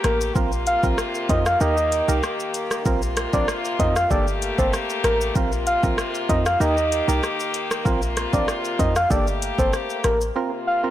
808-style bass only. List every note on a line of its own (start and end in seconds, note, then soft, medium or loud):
0.04 0.31 A1 medium
0.36 0.77 A#1 loud
0.84 0.96 A#1 medium
1.29 1.56 F2 loud
1.61 2.02 D#2 loud
2.09 2.21 C2 medium
2.86 3.27 A#1 loud
3.34 3.46 A#1 loud
3.79 4.06 F2 medium
4.11 4.52 G1 loud
4.59 4.71 G1 medium
5.04 5.31 A1 medium
5.36 5.77 A#1 loud
5.83 5.96 A#1 medium
6.29 6.56 F2 loud
6.60 7.02 D#2 loud
7.08 7.21 C2 medium
7.86 8.27 A#1 loud
8.33 8.46 A#1 medium
8.79 9.06 F2 medium
9.11 9.52 G1 loud
9.59 9.71 G1 medium
10.05 10.31 A1 medium